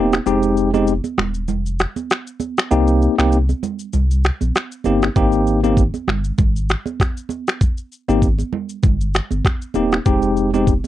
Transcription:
Already playing: sub bass D#1, tine electric piano A#3 C4 D#4 G4
0.13 finger snap, cross-stick, shaker
0.26 sub bass F1, tine electric piano G#3 C4 D#4 G4, shaker
0.43 shaker
0.57 shaker
0.74 tine electric piano G#3 C4 D#4 G4, high conga, shaker
0.87 shaker
1.04 high conga, shaker
1.18 sub bass D#1, finger snap, cross-stick, low conga
1.34 shaker
1.48 sub bass F1, low conga, shaker
1.66 shaker
1.79 finger snap, cross-stick, shaker
1.96 high conga, shaker
2.10 finger snap, cross-stick, shaker
2.27 shaker
2.40 high conga, shaker
2.57 finger snap, cross-stick, shaker
2.71 sub bass C2, tine electric piano A#3 C4 D#4 G4, shaker
2.87 shaker
3.02 shaker
3.18 sub bass C2, tine electric piano A#3 C4 D#4 G4, finger snap, cross-stick, high conga, shaker
3.32 shaker
3.49 high conga, shaker
3.63 low conga, shaker
3.79 shaker
3.93 sub bass C2, low conga, shaker
4.11 shaker
4.24 finger snap, cross-stick, shaker
4.41 sub bass A#1, high conga, shaker
4.55 finger snap, cross-stick, shaker
4.72 shaker
4.84 sub bass G1, tine electric piano A#3 C4 D#4 G4, high conga, shaker
5.02 finger snap, cross-stick, shaker
5.16 sub bass G#1, tine electric piano A#3 C4 D#4 G4, kick, shaker
5.32 shaker
5.47 shaker
5.63 tine electric piano A#3 C4 D#4 G4, high conga, shaker
5.77 kick, shaker
5.94 high conga, shaker
6.08 sub bass G1, finger snap, cross-stick, low conga
6.24 shaker
6.38 sub bass G#1, kick, low conga, shaker
6.56 shaker
6.69 finger snap, cross-stick, shaker
6.86 high conga, shaker
7.00 finger snap, kick, cross-stick, shaker
7.17 shaker
7.29 high conga, shaker
7.47 finger snap, cross-stick, shaker
7.61 kick, shaker
7.78 shaker
7.92 shaker
8.08 sub bass G#1, tine electric piano A#3 C4 D#4 G4, high conga, shaker
8.22 kick, shaker
8.39 high conga, shaker
8.53 low conga
8.69 shaker
8.83 sub bass G1, kick, low conga, shaker
9.01 shaker
9.14 finger snap, cross-stick, shaker
9.31 sub bass G1, high conga, shaker
9.45 finger snap, kick, cross-stick, shaker
9.62 shaker
9.74 sub bass D#1, tine electric piano A#3 C4 D#4 G4, high conga, shaker
9.92 finger snap, cross-stick, shaker
10.06 sub bass F1, tine electric piano G#3 C4 D#4 G4, kick, shaker
10.22 shaker
10.37 shaker
10.53 tine electric piano G#3 C4 D#4 G4, high conga, shaker
10.67 kick, shaker
10.84 high conga, shaker

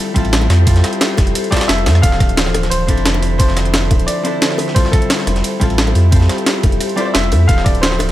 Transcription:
Already playing: hollow-body jazz guitar G3 C4 E4 F4 A4, ambient pad G4 A4 C5
0.14 sub bass A1, hollow-body jazz guitar G3 C4 E4 F4 A4, kick, closed hi-hat, ride
0.25 ride
0.33 snare, closed hi-hat, ride
0.41 ride, high bongo
0.50 sub bass F2, snare, open hi-hat, ride
0.65 hollow-body jazz guitar G3 C4 E4 F4 A4, kick, closed hi-hat, ride
0.76 snare, closed hi-hat
0.84 cross-stick, snare, closed hi-hat, ride
0.93 closed hi-hat
1.01 snare, closed hi-hat, ride
1.18 sub bass F1, kick, cross-stick, snare, closed hi-hat, ride, high bongo
1.27 closed hi-hat
1.35 cross-stick, closed hi-hat, ride
1.44 closed hi-hat
1.50 hollow-body jazz guitar G3 C4 E4 F4 A4, grand piano D5, kick, snare, closed hi-hat, ride
1.57 snare, ride
1.61 snare, ride
1.68 sub bass F1, grand piano E5, snare, closed hi-hat, ride
1.78 ride
1.86 sub bass F2, snare, open hi-hat, ride, high bongo
1.95 cross-stick, ride
2.02 sub bass D1, ambient pad D3, hollow-body jazz guitar E3 F3 C4 D4 A4, grand piano F5, kick, closed hi-hat, ride
2.12 snare
2.20 kick, cross-stick, closed hi-hat, ride
2.29 closed hi-hat
2.37 snare, closed hi-hat, ride
2.46 snare
2.54 sub bass D1, cross-stick, closed hi-hat, ride, high bongo
2.63 snare, closed hi-hat
2.70 sub bass D1, grand piano C5, closed hi-hat, ride
2.87 sub bass F1, hollow-body jazz guitar F3 C4 D4 E4 A4, kick, closed hi-hat, ride
2.98 ride
3.06 snare, closed hi-hat, ride
3.14 ride, high bongo
3.22 open hi-hat, ride
3.38 hollow-body jazz guitar F3 C4 D4 E4 A4, grand piano C5, kick, closed hi-hat, ride
3.48 snare
3.57 cross-stick, snare, closed hi-hat, ride
3.65 closed hi-hat
3.74 snare, closed hi-hat, ride
3.91 sub bass D1, kick, closed hi-hat, ride, high bongo
3.99 closed hi-hat
4.07 grand piano D5, cross-stick, closed hi-hat, ride
4.23 hollow-body jazz guitar F3 C4 D4 E4 A4, closed hi-hat, ride
4.42 snare, closed hi-hat, ride
4.51 snare
4.58 open hi-hat, ride, high bongo
4.68 snare
4.74 hollow-body jazz guitar G3 C4 E4 F4 A4, ambient pad G4 A4, grand piano C5, kick, closed hi-hat, ride
4.85 snare
4.92 grand piano A4, kick, cross-stick, closed hi-hat, ride
5.02 closed hi-hat
5.10 snare, closed hi-hat, ride
5.19 snare
5.27 sub bass F1, cross-stick, closed hi-hat, ride, high bongo
5.36 snare, closed hi-hat
5.44 closed hi-hat, ride
5.60 sub bass A1, hollow-body jazz guitar G3 C4 E4 F4 A4, kick, closed hi-hat, ride
5.70 ride
5.78 snare, closed hi-hat, ride
5.87 ride, high bongo
5.95 sub bass F2, open hi-hat, ride
6.11 hollow-body jazz guitar G3 C4 E4 F4 A4, kick, closed hi-hat, ride
6.21 snare
6.29 cross-stick, snare, closed hi-hat, ride
6.38 closed hi-hat
6.46 snare, closed hi-hat, ride
6.63 sub bass F1, kick, closed hi-hat, ride, high bongo
6.72 closed hi-hat
6.81 cross-stick, closed hi-hat, ride
6.89 closed hi-hat
6.96 hollow-body jazz guitar G3 C4 E4 F4 A4, grand piano D5, closed hi-hat, ride
7.00 grand piano C5
7.05 grand piano D5
7.14 sub bass F1, grand piano E5, snare, closed hi-hat, ride
7.24 ride
7.32 sub bass F2, open hi-hat, ride, high bongo
7.47 sub bass D1, ambient pad D3 C5 D5, hollow-body jazz guitar F3 C4 D4 E4 A4, grand piano F5, kick, closed hi-hat, ride
7.58 snare
7.64 grand piano D5, kick, cross-stick, closed hi-hat, ride
7.75 closed hi-hat
7.81 grand piano C5, snare, closed hi-hat, ride
7.92 snare
7.99 sub bass D1, cross-stick, closed hi-hat, ride, high bongo

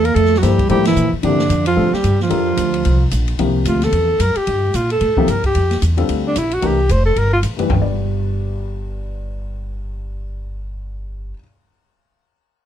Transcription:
Already playing: upright bass E2
0.04 bass clarinet A#3, alto saxophone A#4, ride
0.15 upright bass F2, bass clarinet A3, alto saxophone A4, ride
0.25 snare
0.34 bass clarinet F#3, alto saxophone F#4, snare
0.42 upright bass G2, grand piano F3 A#3 E4 A4 C5, bass clarinet G3, alto saxophone G4, snare, hi-hat pedal, ride
0.59 kick, ride
0.69 upright bass A2, grand piano F3 A#3 E4 A4 C5, bass clarinet G3, alto saxophone G4, ride
0.85 bass clarinet E3, alto saxophone E4, snare, ride
0.96 upright bass A#2, hi-hat pedal
1.12 muted upright bass stroke
1.23 upright bass G2, grand piano C3 F3 A#3 E4 G4, bass clarinet D3, alto saxophone D4, ride
1.39 snare
1.49 upright bass F2, hi-hat pedal, ride
1.66 bass clarinet F3, alto saxophone F4, ride
1.76 upright bass A2, grand piano D3 G3 C4 F4 A4
1.93 bass clarinet G3, alto saxophone G4, muted upright bass stroke, snare
2.04 upright bass G2, hi-hat pedal, ride
2.20 bass clarinet F3, alto saxophone F4, snare
2.29 upright bass F2, grand piano F3 D4 G4 A4 A#4, ride
2.57 upright bass D2, hi-hat pedal, ride
2.74 ride
2.85 upright bass C2, ride
3.11 upright bass A#1, hi-hat pedal, ride
3.28 ride
3.39 upright bass C2, grand piano C3 F3 A#3 E4 G4, ride
3.65 upright bass D2, alto saxophone F4, hi-hat pedal, ride
3.82 alto saxophone A4, snare, ride
3.92 upright bass E2, ride
4.19 upright bass F#2, alto saxophone A#4, hi-hat pedal, ride
4.36 alto saxophone G4, muted upright bass stroke, ride
4.47 upright bass G2, ride
4.74 upright bass A#2, alto saxophone F4, hi-hat pedal, ride
4.90 alto saxophone A4, ride
5.01 upright bass A2, ride
5.17 grand piano C3 F3 A#3 E4 G4, muted upright bass stroke, kick
5.28 upright bass G2, alto saxophone A#4, hi-hat pedal, ride
5.44 alto saxophone G4, kick, ride
5.55 upright bass F2, ride
5.71 snare, ride
5.82 upright bass E2, hi-hat pedal, ride
5.97 grand piano D3 G3 C4 F4 A4, ride
6.09 upright bass D2, ride
6.27 alto saxophone D4
6.36 upright bass A#1, alto saxophone E4, hi-hat pedal, ride
6.51 alto saxophone F#4, ride
6.61 upright bass C2, grand piano E3 A3 D4 G4 A#4, ride
6.66 alto saxophone G4
6.89 upright bass F1, alto saxophone C5, hi-hat pedal, ride
7.06 alto saxophone A4
7.16 upright bass G1, alto saxophone A#4, ride
7.33 alto saxophone F4
7.43 upright bass A1, hi-hat pedal, ride
7.57 grand piano G2 E3 A3 D4 G4 B4, muted upright bass stroke, ride
7.63 grand piano G3
7.69 upright bass G1, grand piano D4, kick, floor tom
7.75 grand piano B4
7.82 grand piano D5

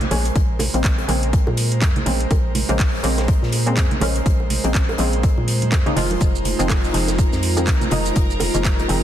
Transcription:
Already playing: analog synth pad G#3 A#4 C5
0.01 closed hi-hat, low conga
0.11 fm bass A#1, synth stab C#3 G#3 A#3 C#4, closed hi-hat, open hi-hat, high bongo, low conga
0.25 closed hi-hat
0.36 fm bass A#1, kick, closed hi-hat
0.59 closed hi-hat, open hi-hat, high bongo, low conga
0.74 fm bass A#1, synth stab C#3 G#3 A#3 C4, closed hi-hat
0.84 kick, snare, clap, closed hi-hat
0.98 closed hi-hat, high bongo
1.08 fm bass A#1, synth stab C#3 G#3 A#3 C4, closed hi-hat, open hi-hat
1.23 closed hi-hat
1.33 kick, closed hi-hat
1.47 fm bass A#2, high bongo, high conga
1.57 closed hi-hat, open hi-hat
1.72 closed hi-hat
1.82 fm bass F2, kick, snare, clap, closed hi-hat, high bongo
1.96 closed hi-hat, low conga
2.06 fm bass A#1, synth stab C#3 G#3 A#3 C4, closed hi-hat, open hi-hat, low conga
2.20 closed hi-hat
2.31 fm bass A#1, kick, closed hi-hat, high bongo
2.55 closed hi-hat, open hi-hat, low conga
2.69 fm bass A#1, synth stab C#3 G#3 A#3 C4, closed hi-hat, high bongo
2.79 kick, snare, clap, closed hi-hat, open hi-hat
2.93 snare
3.03 fm bass A#1, synth stab C#3 G#3 A#3 C4, snare, closed hi-hat, open hi-hat
3.18 snare, closed hi-hat, high bongo
3.28 kick, closed hi-hat
3.42 fm bass A#2, snare
3.52 closed hi-hat, open hi-hat, high bongo
3.66 synth stab C#3 G#3 A#3 C4, closed hi-hat
3.77 fm bass F2, kick, snare, clap, closed hi-hat
3.91 closed hi-hat, low conga
4.00 fm bass A#1, synth stab C#3 G#3 A#3 C#4, closed hi-hat, open hi-hat, high bongo, low conga
4.16 closed hi-hat
4.26 fm bass A#1, kick, closed hi-hat
4.40 high bongo
4.50 closed hi-hat, open hi-hat, low conga
4.64 fm bass A#1, synth stab C#3 G#3 A#3 C4, closed hi-hat
4.75 kick, snare, clap, closed hi-hat
4.89 closed hi-hat, high bongo
4.98 fm bass A#1, synth stab C#3 G#3 A#3 C4, closed hi-hat, open hi-hat
5.13 closed hi-hat
5.23 kick, closed hi-hat, high bongo
5.38 fm bass A#2, high conga
5.48 closed hi-hat, open hi-hat
5.62 closed hi-hat, high conga
5.72 fm bass F2, kick, snare, clap, closed hi-hat, high bongo
5.86 synth stab C#3 G#3 A#3 D#4, closed hi-hat, low conga
5.96 fm bass F1, synth stab D#3 F3 G#3 F4, analog synth pad D#4 F4, snare, open hi-hat, low conga
6.10 closed hi-hat, high bongo, high conga
6.21 fm bass F1, violin section A#4 A#5, kick, closed hi-hat, high bongo, shaker
6.35 shaker
6.45 closed hi-hat, open hi-hat, low conga
6.59 fm bass F1, synth stab D#3 F3 G#3 C4, closed hi-hat, shaker
6.70 kick, snare, clap, closed hi-hat, high bongo, shaker
6.84 snare, shaker
6.93 fm bass F1, synth stab D#3 F3 G#3 C4, snare, closed hi-hat, open hi-hat
7.08 snare, closed hi-hat, high bongo, shaker
7.18 kick, closed hi-hat, shaker
7.32 fm bass F2, snare, shaker
7.43 closed hi-hat, open hi-hat
7.57 synth stab D#3 F3 G#3 C4, closed hi-hat, high bongo, shaker
7.67 fm bass C2, kick, snare, clap, closed hi-hat, shaker
7.81 closed hi-hat, low conga, shaker
7.91 fm bass F1, synth stab D#3 F3 G#3 D#4, closed hi-hat, open hi-hat, high bongo, low conga
8.05 closed hi-hat, shaker
8.16 fm bass F1, kick, closed hi-hat, shaker
8.30 shaker
8.40 closed hi-hat, open hi-hat, high bongo, low conga
8.54 fm bass F1, synth stab D#3 F3 G#3 A#3, closed hi-hat, shaker
8.65 kick, snare, clap, closed hi-hat, shaker
8.79 closed hi-hat, high bongo, shaker
8.88 fm bass F1, synth stab D#3 F3 G#3 C4, closed hi-hat, open hi-hat

